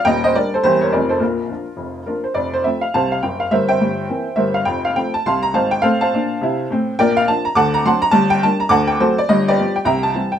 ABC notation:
X:1
M:4/4
L:1/8
Q:"Swing" 1/4=208
K:Bb
V:1 name="Upright piano"
[eg] [ce] [Bd] [Ac] [Gc] [B^c] [Bd] [A=c] | [FB]6 [FB] c | [K:F] d c e f [cfa] f g f | [Bce] [ceg]4- [ceg] [Bce] f |
g f g a [fac'] b [cfa] g | [Acf] [cfa]4- [cfa] z2 | [K:Gm] [Bdg] f a b [^fad'] b [fac'] b | a g a b [^fad'] g [^FAc] d |
e [G=Bd]2 g [=eg_b] a2 g |]
V:2 name="Upright piano" clef=bass
[E,,,E,,]2 [G,B,D]2 [=E,,,=E,,G,B,=E]2 [F,,,F,,F,A,_E]2 | [B,,,B,,]2 [F,B,D]2 [F,,,F,,]2 [F,B,D]2 | [K:F] [F,,,F,,]2 [F,A,C]2 [C,,C,]2 [_G,,,_G,,]2 | [G,,,G,,]2 [G,,,G,,]2 [E,B,C]2 [G,,,G,,]2 |
[F,,,F,,]2 [F,A,C]2 [C,,C,]2 [_A,,,_A,,]2 | [A,,C]2 [B,,D]2 [C,E]2 [A,,C]2 | [K:Gm] [B,,,B,,]2 [F,B,D]2 [D,,D,]2 [^F,CD]2 | [G,,,G,,]2 [G,B,D]2 [D,,D,]2 [^F,A,C]2 |
[G,,,G,,]2 [F,G,=B,]2 [C,,C,]2 [=E,G,C]2 |]